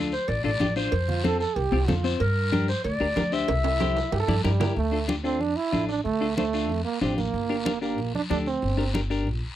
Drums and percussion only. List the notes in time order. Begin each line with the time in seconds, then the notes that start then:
0.12 short guiro
0.28 cowbell, high conga, long guiro
0.60 high conga, low timbale, short guiro
0.76 short guiro
0.92 cowbell, high conga, long guiro
1.09 low conga
1.24 high conga, short guiro
1.40 short guiro
1.56 cowbell, high conga, long guiro
1.88 high conga, low conga, low timbale, short guiro
2.04 short guiro
2.20 cowbell, high conga, long guiro
2.52 high conga, short guiro
2.68 short guiro
2.84 cowbell, high conga, long guiro
3.16 high conga, low timbale, short guiro
3.32 short guiro
3.48 cowbell, high conga, high timbale, long guiro
3.64 high timbale
3.80 high conga, high timbale, short guiro
3.96 low timbale, short guiro
4.12 cowbell, high conga, low timbale, long guiro
4.28 high conga
4.44 high conga, low timbale, short guiro
4.61 low conga, low timbale, short guiro
4.76 high conga, long guiro
5.09 high conga, short guiro
5.25 short guiro
5.41 high conga, long guiro
5.73 high conga, short guiro
5.89 short guiro
6.05 high conga, long guiro
6.37 high conga, short guiro
6.53 short guiro
6.70 high conga, long guiro
7.02 high conga, short guiro
7.18 high conga, short guiro
7.34 high conga, long guiro
7.66 high conga, short guiro
7.82 short guiro
7.98 high conga, long guiro
8.15 high conga
8.30 high conga, short guiro
8.46 short guiro
8.62 high conga, long guiro
8.94 high conga, short guiro
9.11 short guiro
9.27 high conga, long guiro